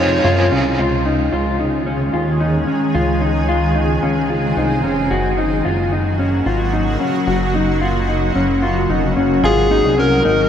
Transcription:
Already playing: F2 C3 G#3 D#4 F4 G#4 C#5
0.00 C4 F4
0.23 F#2 G#3 C4 F4
0.29 G#4
0.51 C2 C#4 F4 G#4
0.56 C4
0.79 C#2 D#3 G#3 C#4 F4 G#4
1.05 D#4
1.32 C#2 F4
1.60 D#4
1.86 C#4
2.13 D#2 F4
2.40 D#4
2.67 C#4
2.95 C#2 C4 F4
3.21 D#4
3.49 F4
3.75 D#4
4.03 C#2 C#4
4.30 F4
4.57 C2 D#4
4.84 F1 C#4
5.11 F#1 C#3 F#3 A#3 F#4
5.38 D#4
5.65 F#1 F4
5.92 D#4
6.19 C#4
6.46 G#1 F4
6.73 D#4
7.00 C#4
7.27 F#1 F#4
7.54 D#4
7.81 F4
8.09 D#4
8.35 F#1 C#4
8.62 F4
8.90 F1 D#4
9.17 F#1 C#4
9.44 G#1 C3 F#3 G#3 D#4 F4 G#4 G#5
9.71 D#4
9.85 C2
9.98 C#4 A#4
10.25 G#1 D#4

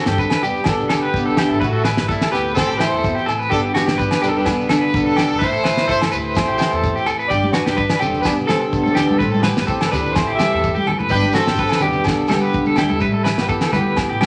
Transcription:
Already playing: G2 C4
0.00 A4
0.06 G2 G4, snare
0.18 D4 B4, kick, shekere
0.30 snare, low agogo
0.42 E1 G3 B3 D4 G4, shekere
0.56 shekere
0.64 B3 D4 A4, kick, snare, low agogo, shekere
0.80 B1, shekere
0.89 D3 B3 D4 G4 A4, snare, low agogo, shekere
1.03 B4
1.14 B1 B3, kick, shekere
1.26 A4
1.30 shekere
1.37 G3 E4 G4, snare, low agogo, shekere
1.49 G#1 A4, shekere
1.60 A1 A2 A3 F#4 B4, kick, shekere
1.73 A4
1.84 G3 E4 B4, snare, low agogo, shekere
1.97 G1, snare
2.08 G3 C4 E4 A4, kick, shekere
2.21 snare, low agogo
2.32 D2 A3 B3 E4 G4 B4, snare, shekere
2.47 shekere
2.54 C4 A4, kick, snare, low agogo
2.59 shekere
2.67 A1 G4, shekere
2.77 E3 E4 G4 C5, snare, low agogo
2.81 E4, shekere
2.91 E2 A4
3.03 B2, kick, shekere
3.15 G4, shekere
3.26 A1 A2 A4, low agogo, shekere
3.39 B4, shekere
3.50 G1 G2 G3 B3 D4 G4 A4, kick, shekere
3.74 B3 F#4 G4, snare, low agogo, shekere
3.87 G2 G4, snare
3.98 D4 B4, kick, shekere
4.11 snare, low agogo
4.22 E1 G3 D4 G4 A4 B4, snare, shekere
4.29 A4
4.37 D4 B4, shekere
4.46 B3, kick, snare, low agogo, shekere
4.59 B1, shekere
4.69 D3 D4 A4, snare, low agogo, shekere
4.81 B4
4.93 B1 B3 D4 A4, kick, shekere
5.05 A4, shekere
5.16 G4, snare, low agogo, shekere
5.28 E1 A4, shekere
5.39 A1 A2 E4 B4 C5, kick, shekere
5.53 A4, shekere
5.63 B4, snare, low agogo, shekere
5.77 G1, snare
5.88 E4 A4 C5, kick, shekere
6.01 snare, low agogo, shekere
6.12 D2 A3 E4 G4 B4 C5, shekere
6.35 C4, kick, snare, low agogo, shekere
6.47 A1 G4, shekere
6.58 E3 E4 G4, snare, low agogo, shekere
6.71 E2 A4, shekere
6.84 C4, kick, shekere
6.95 G4, shekere
7.06 E2 A4, low agogo, shekere
7.19 B4, shekere
7.28 G1 G2 G4 D5, kick, shekere
7.43 high conga
7.53 D4 F#4 B4, snare, low agogo, shekere
7.66 G2 G4, snare
7.77 D4 B4, kick, shekere
7.89 snare, low agogo
7.98 G3 C4 G4 A4, low conga, shekere
8.03 E1 D4
8.14 low conga, shekere
8.21 D4 B4, snare, low agogo
8.25 B3, kick, shekere
8.38 B1, shekere
8.46 D3 A4, snare, low agogo
8.50 C4 D4, high conga
8.60 muted clean electric guitar stroke
8.73 B1 B3, kick, shekere
8.83 A4, high conga, shekere
8.92 G4, snare
8.96 B3, low conga, low agogo, shekere
9.07 E1 A4, high conga, shekere
9.16 A4 B4
9.20 A1 A2 C4, kick, shekere
9.32 A4, high conga
9.40 B3 G4 B4, snare, low agogo
9.44 shekere
9.57 G1, snare
9.64 C4 G4 A4
9.68 E4, kick, shekere
9.81 snare, low agogo
9.87 D4 B4
9.92 D2 A3 G4 B4, snare, low conga, shekere
10.06 low conga, shekere
10.12 E4 C5, low agogo, shekere
10.16 C4, kick, snare
10.27 A1 G4, shekere
10.35 G4 E5, shekere
10.39 E3 E4, snare, high conga, low agogo
10.52 E2 A4
10.64 kick, shekere
10.75 G4, high conga, shekere
10.87 F#1 A4, low conga, low agogo
10.99 B4, high conga, shekere
11.09 G1 G2 D4 G4 B4, kick, shekere
11.23 high conga
11.32 C4 F#4 A4, snare, low agogo, shekere
11.47 G2 G4, snare
11.56 B4, kick, shekere
11.69 snare, low agogo
11.80 E1 G3 B3 D4 G4, low conga, shekere
11.92 low conga, shekere
12.04 B3 D4 A4, kick, snare, low agogo, shekere
12.18 B1, shekere
12.28 D3 B3 D4 G4 A4, snare, high conga, low agogo, shekere
12.42 B4
12.53 B1, kick, shekere
12.65 A4, high conga, shekere
12.76 G2 G3 E4 G4, snare, low conga, low agogo, shekere
12.89 E2 A4, high conga, shekere
13.00 A1 B4, muted steel-string acoustic guitar stroke, kick, shekere
13.12 A4, high conga
13.24 B4, snare, low agogo, shekere
13.38 G1 B3 G4, snare, shekere
13.49 E4 A4, kick, shekere
13.61 snare, low agogo, shekere
13.72 D2 A3 B3 E4 G4 B4, snare, high conga, low conga, shekere
13.97 kick, snare, low agogo, shekere
14.09 A1 G4
14.21 E3 E4 G4, snare, high conga, low agogo, shekere

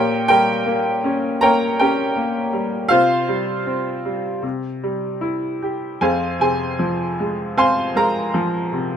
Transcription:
Already playing: A#2 G4 A#4 C#5 G5
0.28 G3 G4 A#4 G5
0.66 A#3
1.04 C#4
1.41 A#3 A#4 C#5 G5 A#5
1.79 C#4 G4 A#4 G5
2.16 A#3
2.53 G3
2.89 C3 F4 C5 F5
3.28 G3
3.66 C4
4.05 G3
4.43 C3
4.83 G3
5.21 E4
5.62 G4
6.01 F2 G#4 C5 F5 G#5
6.40 C3 G#4 C5 G#5
6.79 F3
7.20 G#3
7.57 C4 C5 F5 G#5 C6
7.95 G#3 A#4 F5 A#5
8.34 F3
8.73 C3

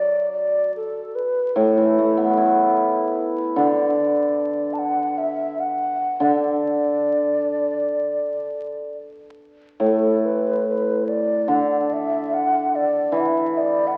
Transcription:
Already playing: F#3 D5
0.32 D5
0.76 A4
1.15 B4
1.50 B4
1.56 A2 A4
1.77 E3
1.98 A3
2.17 B3
2.37 E4
3.56 D3 D5
4.73 A5
4.79 F#5
5.18 E5
5.60 F#5
6.20 D3 D5
9.80 A2
9.84 A4
10.25 B4
10.68 B4
11.09 D5
11.48 D3
11.52 D5
11.93 E5
12.34 F#5
12.75 D5
13.12 E3
13.17 E5 F#5
13.29 E5
13.58 D5
13.87 F#5

